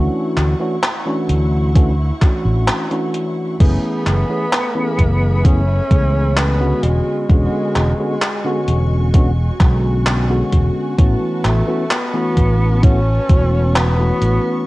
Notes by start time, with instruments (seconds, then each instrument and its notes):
Already playing: tine electric piano E3 A3 C#4 D4 F#4, string section E4 F#5 C#6
0.37 fretless electric bass D2, clap, closed hi-hat
0.60 tine electric piano E3 A3 C#4 D4 F#4
0.83 clap, closed hi-hat
1.06 tine electric piano E3 A3 C#4 D4 F#4
1.29 fretless electric bass D2, closed hi-hat
1.75 tine electric piano E3 A3 C#4 D4 F#4, kick, closed hi-hat
2.21 tine electric piano E3 A3 C#4 D4 F#4, kick, clap, closed hi-hat
2.45 fretless electric bass A1
2.68 clap, closed hi-hat
2.91 tine electric piano E3 A3 C#4 D4 F#4, closed hi-hat
3.14 closed hi-hat
3.60 fretless electric bass F#1, tine electric piano E3 A3 B3 C#4 G#4, string section A3 E5 G#5 B5, tenor saxophone B3, kick, closed hi-hat, crash
4.06 fretless electric bass F#1, clap, closed hi-hat
4.29 tine electric piano E3 A3 B3 C#4 G#4
4.53 clap, closed hi-hat
4.75 tine electric piano E3 A3 B3 C#4 G#4
4.99 fretless electric bass F#1, kick, closed hi-hat
5.44 tine electric piano E3 A3 B3 C#4 G#4, tenor saxophone C#4, kick, closed hi-hat
5.90 fretless electric bass C#2, tine electric piano E3 A3 B3 C#4 G#4, kick, closed hi-hat
6.37 tenor saxophone B3, clap, closed hi-hat
6.59 tine electric piano D3 G#3 B3 C#4 F#4
6.83 fretless electric bass E1, tenor saxophone G#3, string section F#4 C#6, closed hi-hat
7.29 fretless electric bass E1, tine electric piano D3 G#3 B3 C#4 F#4, kick, closed hi-hat
7.76 fretless electric bass E1, clap, closed hi-hat
7.98 tine electric piano D3 G#3 B3 C#4 F#4
8.22 clap, closed hi-hat
8.44 tine electric piano D3 G#3 B3 C#4 F#4
8.68 fretless electric bass E1, closed hi-hat
9.13 tine electric piano D3 G#3 B3 C#4 F#4, kick, closed hi-hat
9.60 fretless electric bass B1, tine electric piano D3 G#3 B3 C#4 F#4, kick, clap, closed hi-hat
10.06 clap, closed hi-hat
10.29 tine electric piano D3 G#3 B3 C#4 F#4
10.52 fretless electric bass E1, kick, closed hi-hat
10.98 fretless electric bass A1, tine electric piano E3 A3 B3 C#4 F#4, string section B4 A5 C#6, kick, closed hi-hat
11.45 fretless electric bass A1, tenor saxophone A3, clap, closed hi-hat
11.67 tine electric piano E3 A3 B3 C#4 F#4
11.91 tenor saxophone B3, clap, closed hi-hat
12.13 tine electric piano E3 A3 B3 C#4 F#4
12.37 fretless electric bass A1, kick, closed hi-hat
12.82 tine electric piano E3 A3 B3 C#4 F#4, tenor saxophone C#4, kick, closed hi-hat
13.29 fretless electric bass E1, tine electric piano E3 A3 B3 C#4 F#4, kick, closed hi-hat
13.75 tenor saxophone B3, clap, closed hi-hat
13.98 tine electric piano E3 A3 B3 C#4 F#4
14.22 fretless electric bass A1, closed hi-hat